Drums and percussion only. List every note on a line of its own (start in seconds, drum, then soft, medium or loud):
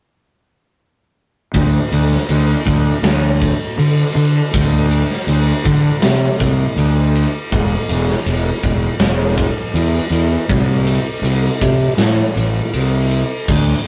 1.54 kick loud
1.54 ride medium
1.92 ride medium
2.11 snare soft
2.29 ride loud
2.67 kick medium
2.67 ride medium
3.04 snare loud
3.04 ride medium
3.42 kick medium
3.42 ride medium
3.79 ride loud
4.17 ride medium
4.54 kick loud
4.54 ride loud
4.91 ride medium
5.10 snare soft
5.28 ride medium
5.65 kick medium
5.65 ride medium
6.02 snare loud
6.02 ride medium
6.40 kick medium
6.40 ride medium
6.78 ride medium
7.15 ride medium
7.52 kick loud
7.52 ride medium
7.89 ride medium
8.08 snare soft
8.26 ride loud
8.63 kick medium
8.63 ride medium
9.00 snare loud
9.00 ride loud
9.38 kick medium
9.38 ride medium
9.75 ride loud
10.12 ride medium
10.49 kick loud
10.49 ride medium
10.87 ride medium
11.24 ride loud
11.61 kick medium
11.61 ride medium
11.98 snare loud
11.98 ride medium
12.37 ride medium
12.73 ride loud
13.11 ride medium
13.48 kick loud
13.48 crash medium